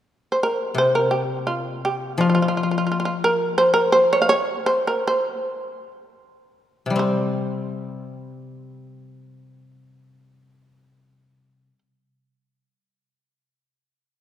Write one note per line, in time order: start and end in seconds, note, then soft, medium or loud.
0.32 0.39 C5 soft
0.43 0.75 A#4 medium
0.74 2.19 C3 soft
0.74 0.94 C5 medium
0.95 1.10 A#4 medium
1.11 1.45 G4 medium
1.47 1.81 F4 medium
1.85 2.18 G4 medium
2.18 4.30 F3 soft
2.18 2.27 F4 medium
2.30 2.34 F4 soft
2.35 2.41 F4 soft
2.42 2.47 F4 soft
2.48 2.55 F4 soft
2.57 2.62 F4 soft
2.63 2.70 F4 soft
2.71 2.77 F4 soft
2.78 2.84 F4 soft
2.87 2.90 F4 soft
2.92 2.98 F4 soft
3.00 3.04 F4 soft
3.05 3.12 F4 medium
3.24 3.57 A#4 medium
3.58 3.73 C5 medium
3.74 3.92 A#4 medium
3.92 4.11 C5 medium
4.13 4.21 C#5 medium
4.22 4.29 F5 medium
4.29 4.65 C#5 medium
4.66 4.85 C5 medium
4.87 5.06 A#4 medium
5.07 5.50 C5 medium
5.50 5.61 B4 medium
5.61 5.91 A#4 medium
6.86 11.69 C3 soft
6.90 11.74 G3 soft
6.96 11.79 C4 soft
6.96 11.79 C5 medium